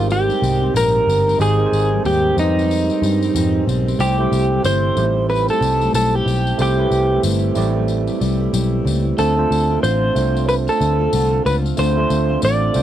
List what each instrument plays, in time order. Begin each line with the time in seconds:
Already playing: picked electric bass G#1, tine electric piano G#3 C4 D#4 G4 A#4 C5, steel-string acoustic guitar C4 D#4
0.00 steel-string acoustic guitar G3
0.10 clean electric guitar G4, tambourine
0.28 steel-string acoustic guitar G3 C4 D#4, tambourine
0.41 picked electric bass C2, steel-string acoustic guitar G#2 G3 C4 D#4, tambourine
0.61 steel-string acoustic guitar G3 C4 D#4
0.74 picked electric bass A#1, steel-string acoustic guitar G#2 G3 C4 D#4, clean electric guitar A#4, tambourine
1.07 picked electric bass G1, steel-string acoustic guitar G#2 G3 C4 D#4, tambourine
1.26 steel-string acoustic guitar G3 C4 D#4, tambourine
1.38 picked electric bass G#1, steel-string acoustic guitar G#2 G3 C4 D#4, tine electric piano G#3 C4 D#4 G4 C5, clean electric guitar G#4, tambourine
1.57 tine electric piano G#3 C4 D#4 A#4 G5, steel-string acoustic guitar C4 D#4
1.66 tine electric piano C5
1.72 picked electric bass G#1, tambourine
1.91 steel-string acoustic guitar G3 C4 D#4
2.04 picked electric bass D#2, steel-string acoustic guitar G#2 G3 C4 D#4, clean electric guitar G4, tambourine
2.36 picked electric bass F2, steel-string acoustic guitar G#2 G3 C4 D#4, tine electric piano G3 C4 D#4 G4 B4, clean electric guitar D#4, tambourine
2.44 tine electric piano C5
2.56 steel-string acoustic guitar G3 C4 D#4, tambourine
2.71 tambourine
2.89 steel-string acoustic guitar G3 C4 D#4, tambourine
3.02 picked electric bass G2, steel-string acoustic guitar G#2 G3 C4 D#4, tambourine
3.21 steel-string acoustic guitar G3 C4 D#4, tambourine
3.34 picked electric bass F2, steel-string acoustic guitar G#2 G3 C4 D#4, tambourine
3.67 picked electric bass B1, steel-string acoustic guitar G#2 G3 C4 D#4, tambourine
3.86 steel-string acoustic guitar G3 C4 D#4, tambourine
3.98 picked electric bass C2, steel-string acoustic guitar C3 G3 A3 E4, tine electric piano A3 C4 E4 G4 C5, clean electric guitar G4, tambourine
4.18 steel-string acoustic guitar G3 A3 E4, tine electric piano A3 C4 E4 G4 C5
4.32 picked electric bass C2, tambourine
4.51 steel-string acoustic guitar G3 A3 E4
4.64 picked electric bass G1, steel-string acoustic guitar C3 G3 A3 E4, clean electric guitar C5, tambourine
4.95 picked electric bass A1, steel-string acoustic guitar C3 G3 A3 E4, tine electric piano A3 C4 D#4 G4 C5, tambourine
5.03 tine electric piano E4
5.15 steel-string acoustic guitar G3 A3 E4
5.29 clean electric guitar B4, tambourine
5.48 steel-string acoustic guitar G3 A3 E4, clean electric guitar A4, tambourine
5.61 picked electric bass C2, steel-string acoustic guitar C3 G3 A3 E4, tambourine
5.80 steel-string acoustic guitar G3 A3 E4, tambourine
5.94 picked electric bass B1, steel-string acoustic guitar G3 A3 E4, clean electric guitar A4, tambourine
6.15 clean electric guitar G4
6.26 picked electric bass B1, steel-string acoustic guitar G3 A3 E4, tambourine
6.47 tambourine
6.57 picked electric bass C2, steel-string acoustic guitar C3 G3 A3 E4, tine electric piano A3 C4 E4 G4 C5, tambourine
6.62 clean electric guitar G4
6.77 steel-string acoustic guitar G3 A3 E4, tine electric piano A3 C4 E4 G4 B4
6.91 picked electric bass C2, tambourine
7.10 steel-string acoustic guitar G3 A3 E4
7.23 picked electric bass G1, steel-string acoustic guitar C3 G3 A3 E4, tambourine
7.55 picked electric bass A1, steel-string acoustic guitar C3 G3 A3 E4, tine electric piano A3 C4 E4 G4 D5, tambourine
7.74 steel-string acoustic guitar G3 A3 E4
7.88 tambourine
8.07 steel-string acoustic guitar G3 A3 E4, tambourine
8.19 picked electric bass C2, steel-string acoustic guitar C3 G3 A3 E4, tambourine
8.39 steel-string acoustic guitar G3 A3 E4
8.53 picked electric bass B1, steel-string acoustic guitar G3 A3 E4, tambourine
8.85 picked electric bass C#2, steel-string acoustic guitar C3 G3 A3 E4, tambourine
9.04 steel-string acoustic guitar G3 A3 E4
9.17 picked electric bass D2, steel-string acoustic guitar D3 A3 C4 F4, tine electric piano A3 C4 D4 F4 C5, clean electric guitar A4, tambourine
9.37 tine electric piano A3 C4 D4 F4 C5, steel-string acoustic guitar A3 C4 F4
9.51 picked electric bass D2, tambourine
9.70 steel-string acoustic guitar A3 C4 F4
9.83 picked electric bass A1, steel-string acoustic guitar D3 A3 C4 F4, clean electric guitar C5, tambourine
10.15 picked electric bass C2, steel-string acoustic guitar D3 A3 C4 F4, tine electric piano A3 C4 D4 F4 C5, tambourine
10.34 steel-string acoustic guitar A3 C4 F4, tambourine
10.48 clean electric guitar B4, tambourine
10.67 steel-string acoustic guitar A3 C4 F4, clean electric guitar A4, tambourine
10.80 picked electric bass D2, steel-string acoustic guitar D3 A3 C4 F4, tambourine
10.99 steel-string acoustic guitar A3 C4 F4
11.13 picked electric bass C2, steel-string acoustic guitar D3 A3 C4 F4, tambourine
11.45 picked electric bass C#2, steel-string acoustic guitar D3 A3 C4 F4, clean electric guitar B4, tambourine
11.64 steel-string acoustic guitar A3 C4 F4, tambourine
11.77 picked electric bass D2, steel-string acoustic guitar D3 A3 C4 F4, tine electric piano A3 C4 D4 F4 C5, clean electric guitar C5, tambourine
11.97 tine electric piano A3 C4 D4 F4 C5, steel-string acoustic guitar A3 C4 F4
12.10 picked electric bass D2, tambourine
12.29 steel-string acoustic guitar A3 C4 F4
12.42 picked electric bass A1, steel-string acoustic guitar D3 A3 C4 F4, clean electric guitar D5, tambourine
12.74 picked electric bass C2, steel-string acoustic guitar D3 A3 C4 F4, tine electric piano A3 C4 D4 F4 C5, tambourine